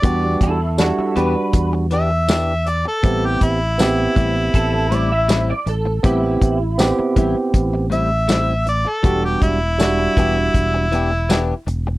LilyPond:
<<
  \new Staff \with { instrumentName = "Clean electric guitar" } { \time 4/4 \key e \minor \tempo 4 = 80 r8 <e' a'>8 <e' a'>8 b'8. r4. r16 | r2 a'8 d''16 e''8 d''16 a'8 | e'2~ e'16 r4. r16 | r1 | }
  \new Staff \with { instrumentName = "Harmonica" } { \time 4/4 \key e \minor d''8 r2 e''4 d''16 a'16~ | a'16 g'16 e'2. r8 | r2 r8 e''4 d''16 a'16~ | a'16 g'16 e'2. r8 | }
  \new Staff \with { instrumentName = "Tine electric piano" } { \time 4/4 \key e \minor <g d' fis'>8 r8 <g d' fis'>4. r4. | <b c' g'>8 r8 <b c' g'>4. r4. | <b c' g'>8 r8 <b c' g'>4. r4. | <g d' fis'>8 r8 <g d' fis'>4. r4. | }
  \new Staff \with { instrumentName = "Clean electric guitar" } { \time 4/4 \key e \minor <e b d' g'>16 <b d' g'>16 r4 <e b d' g'>16 r8. <e b d' g'>16 r16 <e b d' g'>16 r8. | <a, g c' e'>16 <g c' e'>16 r4 <a, g c' e'>16 r8. <a, g c' e'>16 r16 <a, g c' e'>16 r8. | <a, g c' e'>16 <g c' e'>16 r4 <a, g c' e'>16 r8. <a, g c' e'>16 r16 <a, g c' e'>16 r8. | <e b d' g'>16 <b d' g'>16 r4 <e b d' g'>16 r8. <e b d' g'>16 r16 <e b d' g'>16 r8. | }
  \new Staff \with { instrumentName = "Fingered electric bass" } { \clef bass \time 4/4 \key e \minor e,8 e,8. r16 e,16 r16 e,2 | a,,8 a,,4 a,,8 a,,4. a,,8 | a,,8 a,,8. r16 a,,16 r16 a,,2 | e,,8 e,,4 e,,8 e,,4. e,,8 | }
  \new DrumStaff \with { instrumentName = "Drums" } \drummode { \time 4/4 <hh bd>8 <hh bd>8 <hh sn tamb>8 hh8 <hh bd>8 hh8 <hh sn tamb>8 hh8 | <hh bd>8 <hh bd>8 <hh sn tamb>8 <hh bd>8 <hh bd>8 hh8 <hh sn tamb>8 hh8 | <hh bd>8 <hh bd>8 <hh sn tamb>8 <hh bd>8 <hh bd>8 hh8 <hh sn tamb>8 hh8 | <hh bd>8 <hh bd>8 <hh sn tamb>8 <hh bd>8 <hh bd>8 hh8 <hh sn tamb>8 hh8 | }
>>